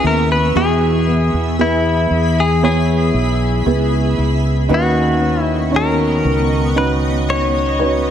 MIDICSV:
0, 0, Header, 1, 6, 480
1, 0, Start_track
1, 0, Tempo, 1034483
1, 257, Time_signature, 4, 2, 24, 8
1, 3761, End_track
2, 0, Start_track
2, 0, Title_t, "Ambient pad"
2, 0, Program_c, 0, 92
2, 0, Note_on_c, 0, 59, 67
2, 0, Note_on_c, 0, 76, 58
2, 0, Note_on_c, 0, 85, 74
2, 237, Note_off_c, 0, 85, 0
2, 238, Note_off_c, 0, 59, 0
2, 266, Note_on_c, 0, 68, 66
2, 266, Note_on_c, 0, 83, 71
2, 2155, Note_off_c, 0, 76, 0
2, 2162, Note_off_c, 0, 68, 0
2, 2163, Note_off_c, 0, 83, 0
2, 2177, Note_on_c, 0, 59, 69
2, 2177, Note_on_c, 0, 75, 62
2, 2178, Note_on_c, 0, 85, 66
2, 3761, Note_off_c, 0, 59, 0
2, 3761, Note_off_c, 0, 75, 0
2, 3761, Note_off_c, 0, 85, 0
2, 3761, End_track
3, 0, Start_track
3, 0, Title_t, "Clean electric guitar"
3, 0, Program_c, 1, 27
3, 32, Note_on_c, 1, 70, 66
3, 146, Note_off_c, 1, 70, 0
3, 148, Note_on_c, 1, 71, 68
3, 262, Note_off_c, 1, 71, 0
3, 263, Note_on_c, 1, 68, 72
3, 721, Note_off_c, 1, 68, 0
3, 748, Note_on_c, 1, 64, 64
3, 1113, Note_off_c, 1, 64, 0
3, 1114, Note_on_c, 1, 68, 62
3, 1223, Note_off_c, 1, 68, 0
3, 1228, Note_on_c, 1, 68, 56
3, 1684, Note_off_c, 1, 68, 0
3, 2200, Note_on_c, 1, 66, 64
3, 2516, Note_off_c, 1, 66, 0
3, 2516, Note_on_c, 1, 64, 64
3, 2650, Note_off_c, 1, 64, 0
3, 2674, Note_on_c, 1, 70, 75
3, 3143, Note_off_c, 1, 70, 0
3, 3145, Note_on_c, 1, 71, 73
3, 3209, Note_off_c, 1, 71, 0
3, 3387, Note_on_c, 1, 73, 84
3, 3761, Note_off_c, 1, 73, 0
3, 3761, End_track
4, 0, Start_track
4, 0, Title_t, "Grand piano"
4, 0, Program_c, 2, 0
4, 0, Control_c, 2, 64, 127
4, 0, Note_on_c, 2, 61, 50
4, 0, Note_on_c, 2, 64, 43
4, 0, Note_on_c, 2, 68, 48
4, 0, Note_on_c, 2, 70, 59
4, 0, Note_on_c, 2, 71, 57
4, 233, Note_off_c, 2, 61, 0
4, 233, Note_off_c, 2, 64, 0
4, 233, Note_off_c, 2, 68, 0
4, 234, Note_off_c, 2, 71, 0
4, 259, Note_on_c, 2, 59, 55
4, 259, Note_on_c, 2, 64, 50
4, 260, Note_on_c, 2, 47, 49
4, 260, Note_on_c, 2, 71, 63
4, 261, Note_on_c, 2, 68, 57
4, 263, Control_c, 2, 64, 0
4, 264, Note_off_c, 2, 70, 0
4, 345, Control_c, 2, 64, 127
4, 714, Note_off_c, 2, 59, 0
4, 714, Note_off_c, 2, 64, 0
4, 714, Note_off_c, 2, 71, 0
4, 715, Note_off_c, 2, 68, 0
4, 737, Note_on_c, 2, 59, 50
4, 737, Note_on_c, 2, 64, 47
4, 738, Note_on_c, 2, 68, 44
4, 742, Note_on_c, 2, 71, 53
4, 960, Note_off_c, 2, 47, 0
4, 1193, Note_off_c, 2, 59, 0
4, 1193, Note_off_c, 2, 64, 0
4, 1193, Note_off_c, 2, 68, 0
4, 1195, Note_off_c, 2, 71, 0
4, 1218, Note_on_c, 2, 59, 60
4, 1219, Note_on_c, 2, 64, 50
4, 1222, Note_on_c, 2, 68, 54
4, 1222, Note_on_c, 2, 73, 66
4, 1673, Note_off_c, 2, 59, 0
4, 1674, Note_off_c, 2, 64, 0
4, 1675, Note_off_c, 2, 68, 0
4, 1675, Note_off_c, 2, 73, 0
4, 1699, Note_on_c, 2, 59, 57
4, 1699, Note_on_c, 2, 64, 51
4, 1702, Note_on_c, 2, 68, 43
4, 1703, Note_on_c, 2, 71, 57
4, 2154, Note_off_c, 2, 59, 0
4, 2154, Note_off_c, 2, 64, 0
4, 2155, Note_off_c, 2, 68, 0
4, 2156, Note_off_c, 2, 71, 0
4, 2175, Note_on_c, 2, 63, 55
4, 2176, Note_on_c, 2, 61, 56
4, 2177, Note_on_c, 2, 71, 64
4, 2178, Note_on_c, 2, 51, 49
4, 2178, Note_on_c, 2, 66, 49
4, 2183, Control_c, 2, 64, 0
4, 2260, Control_c, 2, 64, 127
4, 2632, Note_off_c, 2, 61, 0
4, 2632, Note_off_c, 2, 63, 0
4, 2633, Note_off_c, 2, 66, 0
4, 2633, Note_off_c, 2, 71, 0
4, 2652, Note_on_c, 2, 61, 48
4, 2652, Note_on_c, 2, 63, 45
4, 2653, Note_on_c, 2, 66, 45
4, 2655, Note_on_c, 2, 73, 49
4, 2879, Note_off_c, 2, 51, 0
4, 3110, Note_off_c, 2, 61, 0
4, 3110, Note_off_c, 2, 63, 0
4, 3111, Note_off_c, 2, 66, 0
4, 3112, Note_off_c, 2, 73, 0
4, 3137, Note_on_c, 2, 61, 57
4, 3137, Note_on_c, 2, 63, 51
4, 3138, Note_on_c, 2, 66, 53
4, 3138, Note_on_c, 2, 71, 60
4, 3593, Note_off_c, 2, 61, 0
4, 3593, Note_off_c, 2, 63, 0
4, 3593, Note_off_c, 2, 66, 0
4, 3593, Note_off_c, 2, 71, 0
4, 3615, Note_on_c, 2, 63, 50
4, 3616, Note_on_c, 2, 61, 47
4, 3617, Note_on_c, 2, 73, 57
4, 3619, Note_on_c, 2, 66, 51
4, 3761, Note_off_c, 2, 61, 0
4, 3761, Note_off_c, 2, 63, 0
4, 3761, Note_off_c, 2, 66, 0
4, 3761, Note_off_c, 2, 73, 0
4, 3761, End_track
5, 0, Start_track
5, 0, Title_t, "Nylon-string guitar"
5, 0, Program_c, 3, 24
5, 0, Note_on_c, 3, 49, 67
5, 0, Note_on_c, 3, 59, 43
5, 0, Note_on_c, 3, 68, 56
5, 15, Note_on_c, 3, 64, 46
5, 255, Note_off_c, 3, 49, 0
5, 257, Note_off_c, 3, 68, 0
5, 257, Note_on_c, 3, 52, 72
5, 259, Note_on_c, 3, 68, 55
5, 496, Note_off_c, 3, 59, 0
5, 498, Note_on_c, 3, 59, 52
5, 733, Note_off_c, 3, 68, 0
5, 739, Note_on_c, 3, 68, 58
5, 978, Note_off_c, 3, 64, 0
5, 980, Note_on_c, 3, 64, 43
5, 1215, Note_off_c, 3, 59, 0
5, 1217, Note_on_c, 3, 59, 51
5, 1451, Note_off_c, 3, 64, 0
5, 1457, Note_on_c, 3, 64, 48
5, 1693, Note_off_c, 3, 68, 0
5, 1698, Note_on_c, 3, 68, 56
5, 1932, Note_off_c, 3, 64, 0
5, 1938, Note_on_c, 3, 64, 49
5, 2176, Note_off_c, 3, 52, 0
5, 2177, Note_off_c, 3, 68, 0
5, 2178, Note_on_c, 3, 51, 70
5, 2181, Note_on_c, 3, 71, 66
5, 2225, Note_off_c, 3, 64, 0
5, 2415, Note_off_c, 3, 59, 0
5, 2417, Note_on_c, 3, 61, 51
5, 2901, Note_on_c, 3, 63, 42
5, 3133, Note_off_c, 3, 61, 0
5, 3138, Note_on_c, 3, 61, 48
5, 3152, Note_off_c, 3, 71, 0
5, 3379, Note_off_c, 3, 63, 0
5, 3381, Note_on_c, 3, 63, 47
5, 3619, Note_on_c, 3, 71, 59
5, 3761, Note_off_c, 3, 51, 0
5, 3761, Note_off_c, 3, 61, 0
5, 3761, Note_off_c, 3, 63, 0
5, 3761, Note_off_c, 3, 71, 0
5, 3761, End_track
6, 0, Start_track
6, 0, Title_t, "Fretless electric bass"
6, 0, Program_c, 4, 35
6, 17, Note_on_c, 4, 39, 69
6, 240, Note_off_c, 4, 39, 0
6, 255, Note_on_c, 4, 40, 76
6, 597, Note_off_c, 4, 40, 0
6, 619, Note_on_c, 4, 40, 77
6, 959, Note_off_c, 4, 40, 0
6, 975, Note_on_c, 4, 40, 67
6, 1437, Note_off_c, 4, 40, 0
6, 1456, Note_on_c, 4, 35, 65
6, 1679, Note_off_c, 4, 35, 0
6, 1697, Note_on_c, 4, 37, 70
6, 1920, Note_off_c, 4, 37, 0
6, 1939, Note_on_c, 4, 37, 69
6, 2161, Note_off_c, 4, 37, 0
6, 2177, Note_on_c, 4, 39, 88
6, 2878, Note_off_c, 4, 39, 0
6, 2897, Note_on_c, 4, 37, 75
6, 3761, Note_off_c, 4, 37, 0
6, 3761, End_track
0, 0, End_of_file